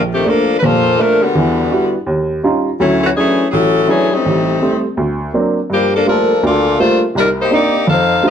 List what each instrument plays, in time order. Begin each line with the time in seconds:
Already playing: upright piano A#1
0.13 saxophone section D#3 A3 C4 G4
0.25 saxophone section F3 A#3 D4 A4, upright piano A3 A#3 D4
0.58 upright piano F1, saxophone section B4
0.62 upright piano A#2, saxophone section A#3 F4 A4 C5
0.99 saxophone section F3 A3 D4 A#4, upright piano A3 A#3 D4
1.21 saxophone section D3 G3 B3 F#4
1.35 upright piano E2 E3
1.71 upright piano G3 D4 E4 F#4
2.07 upright piano D#2
2.44 upright piano G3 C#4 D#4 F4
2.80 upright piano D2 F#3, saxophone section F#3 A3 C#4 E4
3.04 saxophone section E3 A3 C#4 F#4
3.16 saxophone section E3 A3 C#4 G#4, upright piano F#3 C#4 D4 E4
3.49 upright piano A1, saxophone section F#3 C#4 E4 G#4 A4
3.88 saxophone section E3 A3 C#4 G#4, upright piano F#3 C#4 D4 E4
4.12 saxophone section G3 A3 C4 D#4
4.26 upright piano A1
4.62 upright piano G3 A3 C4
4.97 upright piano D2
5.34 upright piano F#3 A#3 C4 D4
5.70 upright piano G2, saxophone section F3 A#3 D4 G4
5.94 saxophone section F3 A#3 D4 A4
6.06 saxophone section F3 D4 A4 A#4, upright piano G3 A3 A#3 F4
6.43 upright piano D2 D3, saxophone section A#3 F4 A4 D5
6.79 upright piano G3 A3 A#3 F4, saxophone section A3 D4 F4 C5
7.15 upright piano C2 C3, saxophone section G3 D4 D#4 A#4
7.40 saxophone section A#3 D#4 G4 C5
7.51 upright piano A#3 C4 D4 D#4, saxophone section A#3 D#4 G4 D5
7.87 upright piano F2, saxophone section D#4 A4 C5 F5
8.23 upright piano G3 A3 D#4 F4